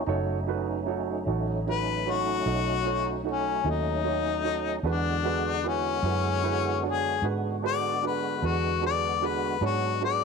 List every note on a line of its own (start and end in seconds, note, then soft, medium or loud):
0.06 1.23 F#1 medium
0.06 4.81 F#3 medium
0.06 4.80 A3 medium
0.06 4.80 C#4 medium
0.06 0.37 D#4 medium
0.06 4.80 D#4 medium
0.06 0.37 F#4 medium
0.06 0.38 A4 medium
0.06 0.38 C#5 medium
0.47 0.77 D#4 medium
0.47 0.77 F#4 medium
0.47 0.77 A4 medium
0.47 0.78 B4 medium
0.86 1.16 D#4 medium
0.86 1.17 F#4 soft
0.86 1.17 A4 medium
0.86 1.17 C#5 medium
1.27 2.42 A1 medium
1.27 1.57 D#4 soft
1.27 1.57 F#4 soft
1.27 1.57 A4 soft
1.27 1.58 C#5 medium
1.67 1.96 D#4 soft
1.67 1.97 F#4 soft
1.67 1.97 A4 soft
1.67 1.97 B4 soft
1.67 2.12 B4 medium
2.05 2.36 D#4 soft
2.05 2.36 F#4 soft
2.05 2.36 A4 soft
2.05 2.36 C#5 medium
2.11 3.24 F#4 medium
2.45 3.62 B1 medium
2.45 2.75 D#4 soft
2.45 2.76 F#4 soft
2.45 2.76 A4 soft
2.45 2.76 D#5 soft
2.85 3.15 D#4 soft
2.85 3.15 F#4 soft
2.85 3.16 A4 soft
2.85 3.16 C#5 medium
3.24 3.55 D#4 soft
3.24 3.55 F#4 soft
3.24 3.55 A4 soft
3.24 3.56 C#5 soft
3.31 3.71 C#4 medium
3.64 4.81 D#2 medium
3.64 3.95 D#4 soft
3.64 3.95 F#4 soft
3.64 3.95 A4 soft
3.64 3.96 C#5 soft
3.70 4.83 D#4 medium
4.03 4.34 D#4 soft
4.03 4.34 F#4 soft
4.03 4.35 A4 soft
4.03 4.35 C#5 medium
4.43 4.74 D#4 soft
4.43 4.74 F#4 soft
4.43 4.75 A4 soft
4.43 4.75 C#5 medium
4.83 6.00 E2 medium
4.83 9.58 D3 medium
4.83 9.58 G#3 medium
4.83 9.58 B3 medium
4.83 5.14 D4 medium
4.83 5.14 F#4 soft
4.83 9.58 F#4 medium
4.83 5.14 G#4 medium
4.83 5.15 B4 medium
4.89 5.69 D4 medium
5.24 5.54 D4 soft
5.24 5.54 F#4 soft
5.24 5.54 G#4 soft
5.24 5.55 B4 medium
5.64 5.94 E4 soft
5.64 5.94 F#4 soft
5.64 5.94 G#4 soft
5.64 5.95 B4 medium
5.68 6.82 C#4 medium
6.03 7.19 F#2 medium
6.03 6.34 E4 soft
6.03 6.34 F#4 soft
6.03 6.34 G#4 soft
6.03 6.35 B4 soft
6.43 6.73 E4 medium
6.43 6.73 F#4 soft
6.43 6.74 G#4 soft
6.43 6.74 B4 medium
6.83 7.13 D4 soft
6.83 7.13 F#4 soft
6.83 7.13 G#4 soft
6.83 7.14 C#5 medium
6.88 7.24 G#4 medium
7.22 8.38 G#2 medium
7.22 7.53 D4 soft
7.22 7.53 F#4 soft
7.22 7.54 G#4 soft
7.22 7.54 B4 medium
7.62 7.92 D4 soft
7.62 7.93 F#4 soft
7.62 7.93 G#4 soft
7.62 7.93 B4 medium
7.67 8.04 D5 medium
8.02 8.32 D4 soft
8.02 8.33 F#4 soft
8.02 8.33 G#4 soft
8.02 8.33 B4 soft
8.07 8.48 B4 medium
8.42 9.58 E2 medium
8.42 8.72 D4 soft
8.42 8.72 F#4 soft
8.42 8.73 G#4 soft
8.42 8.73 B4 soft
8.46 8.83 F#4 medium
8.82 9.12 D4 soft
8.82 9.12 F#4 soft
8.82 9.12 G#4 soft
8.82 9.13 B4 medium
8.86 9.28 D5 medium
9.21 9.51 D4 soft
9.21 9.52 F#4 soft
9.21 9.52 G#4 soft
9.21 9.52 B4 medium
9.26 9.63 B4 medium
9.61 10.24 G#2 medium
9.61 10.24 F#3 medium
9.61 10.24 G#3 medium
9.61 10.24 B3 soft
9.61 9.91 D4 medium
9.61 10.24 D4 medium
9.61 9.91 F#4 medium
9.61 9.92 G#4 medium
9.61 9.92 C#5 medium
9.66 10.02 F#4 medium
10.01 10.24 D4 soft
10.01 10.24 F#4 soft
10.01 10.24 G#4 soft
10.01 10.24 B4 medium
10.05 10.24 D5 medium